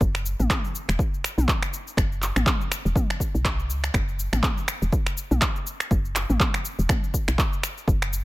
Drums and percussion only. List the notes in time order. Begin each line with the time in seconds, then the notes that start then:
0.01 kick, cabasa
0.15 finger snap, cabasa
0.26 cabasa
0.40 mid tom, cabasa
0.50 finger snap, kick, clap, mid tom, cabasa
0.65 cabasa
0.75 cabasa
0.89 finger snap, cabasa
0.99 kick, cabasa
1.14 cabasa
1.24 finger snap, cabasa
1.38 mid tom, cabasa
1.48 kick, clap, cabasa
1.62 finger snap, cabasa
1.74 cabasa
1.87 cabasa
1.97 finger snap, kick, cabasa
2.12 cabasa
2.22 clap, cabasa
2.36 finger snap, mid tom, cabasa
2.46 kick, clap, mid tom, cabasa
2.61 cabasa
2.72 finger snap, cabasa
2.86 cabasa
2.96 kick, mid tom, cabasa
3.10 finger snap, cabasa
3.20 kick, cabasa
3.35 cabasa
3.45 finger snap, kick, clap, cabasa
3.59 cabasa
3.70 cabasa
3.84 finger snap, cabasa
3.94 finger snap, kick, cabasa
4.09 cabasa
4.19 cabasa
4.33 finger snap, mid tom, cabasa
4.43 kick, clap, mid tom, cabasa
4.58 cabasa
4.68 finger snap, cabasa
4.82 cabasa
4.92 kick, cabasa
5.06 finger snap, cabasa
5.17 cabasa
5.31 mid tom, cabasa
5.42 finger snap, kick, clap, cabasa
5.56 cabasa
5.67 cabasa
5.80 finger snap, cabasa
5.91 kick, cabasa
6.05 cabasa
6.16 finger snap, clap, cabasa
6.30 mid tom, cabasa
6.40 kick, clap, mid tom, cabasa
6.54 finger snap, cabasa
6.65 cabasa
6.79 cabasa
6.89 finger snap, kick, mid tom, cabasa
7.04 cabasa
7.14 kick, cabasa
7.28 finger snap, cabasa
7.38 kick, clap, cabasa
7.53 cabasa
7.63 finger snap, cabasa
7.78 cabasa
7.88 kick, cabasa
8.02 finger snap, cabasa
8.13 cabasa